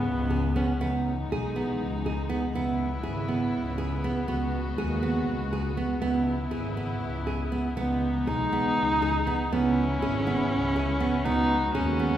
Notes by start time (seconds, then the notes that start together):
Already playing: C#3 E3 B3
0.06 C#2
0.30 G#4
0.56 B3 C#4
0.79 C#2 E3 G#3 B3 D#4
1.30 B1 G#4
1.56 B3
1.81 C#2
2.06 G#4
2.29 B3
2.54 C#2 C#3 B3 E4
3.03 G#1 G#4
3.28 B3
3.54 C#2
3.78 G#4
4.04 B3
4.28 C#2 G#3 B3 F#4
4.78 D#2 G#4
5.03 B3
5.28 C#2
5.53 G#4
5.77 B3
6.02 C#2 C#3 B3 E4
6.51 G#1 G#4
6.77 B3
7.03 C#2
7.27 G#4
7.52 B3
7.77 C#2 E3 G#3 B3 D#4
8.27 B1 D#4 G#4
8.52 B3
8.78 C#2
9.02 G#4
9.27 B3
9.52 C#2 C#3 B3 C#4 E4
10.02 G#1 G#4
10.27 B3
10.52 C#2
10.76 G#4
11.00 B3
11.25 C#2 G#3 B3 D#4 F#4
11.75 D#2 C#4 G#4
11.99 B3